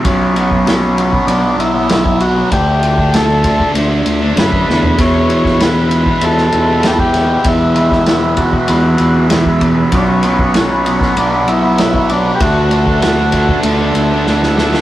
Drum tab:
RD |x-x-x-x-x-x-x-x-|x-x-x-x-x-x-x---|x-x-x-x-x-x-x-x-|x-x-x-x-x-x-x-x-|
SD |----o-------o---|----o-------o-o-|---oo----o--o-o-|---oo-------o---|
FT |----------------|---------------o|----------------|----------------|
BD |o--o---o-----o--|o--o--oo-----o--|o--o---o-----o--|o--o--oo-----oo-|

RD |x-x-x-x-x-x-x-x-|x-x-x-x-x-x-----|
SD |----o--o----o---|----o-------oooo|
FT |----------------|----------------|
BD |o--o---o-----o--|o--o--oo--------|